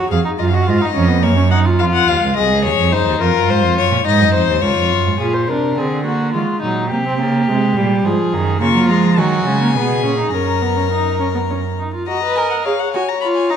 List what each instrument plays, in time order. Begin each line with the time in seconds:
Already playing: violin C#5
0.10 cello F2, viola G#4, violin F5
0.25 viola D#4
0.39 cello F#2, viola F4, violin D#5
0.47 violin F5
0.53 viola F#4, violin D#5
0.63 violin F5
0.67 cello G#2, viola F4, violin D#5
0.78 viola D#4, violin F5
0.86 violin D#5
0.94 cello F2, viola C#4
1.08 viola B3
1.22 cello F#2, viola A#3, violin C#5
1.36 viola C#4
1.50 viola D#4, violin F#5
1.66 viola F4
1.79 cello F2, violin F4 F5
1.93 violin F#5
2.08 cello D#2, violin F5
2.22 cello C#2
2.36 cello C2, violin G#4 D#5
2.50 cello C#2
2.64 cello D#2, violin C#5
2.78 cello F2
2.92 cello F#2, violin D#4 C5
3.06 cello D#2
3.20 cello F2, violin F4 A#4
3.35 cello F#2
3.49 cello G#2, violin C5
3.63 cello F2
3.77 cello F#2, violin C#5
3.91 cello A#2
4.06 cello G#2, violin D#4 D#5
4.20 cello F#2
4.34 cello F2, violin C5
4.49 cello D#2
4.62 cello C#2, violin F4 C#5
4.77 cello F2
4.91 cello F#2
5.06 cello G#2
5.20 cello A#2, viola F4, violin G#4
5.34 violin C5
5.48 cello C3, viola D4, violin A#4
5.77 cello D3, viola C4, violin G#4
6.05 viola A#3, violin F#4
6.33 cello D#3, viola G#3, violin F4
6.62 cello A#2, viola F#3, violin D#4
6.90 cello C3, viola A#3, violin G4
7.06 viola C4
7.19 cello C#3, viola A#3
7.48 cello C3, viola G#3
7.76 cello A#2, viola G3
8.05 cello G#2, viola F3, violin G#4
8.32 cello F#2, viola D#3
8.60 cello C#3, viola A#3, violin F4 C#6
8.74 cello F#3
8.89 cello F3, viola G#3, violin A#5
9.17 cello D#3, viola F#3, violin F#4 G#5
9.45 cello C#3, viola G#3
9.62 viola A#3
9.75 cello B2, viola B3, violin G#4
10.03 cello A#2, viola C#4
10.18 viola D#4
10.32 cello F#2, viola C#4, violin A#4 A#5
10.62 viola B3
10.77 viola C#4
10.92 viola D#4
11.20 viola C#4
11.35 viola B3
11.50 viola C#4
11.79 viola D#4
11.94 viola F4
12.07 viola F#4, violin D#5 A#5
12.23 viola B4
12.36 viola A#4, violin G#5
12.50 violin F#5
12.64 viola G#4, violin C#5 F5
12.80 violin F#5
12.94 viola F#4, violin G#5
13.09 violin A#5
13.21 viola F4, violin B5
13.35 violin G#5
13.50 viola D#4, violin A#5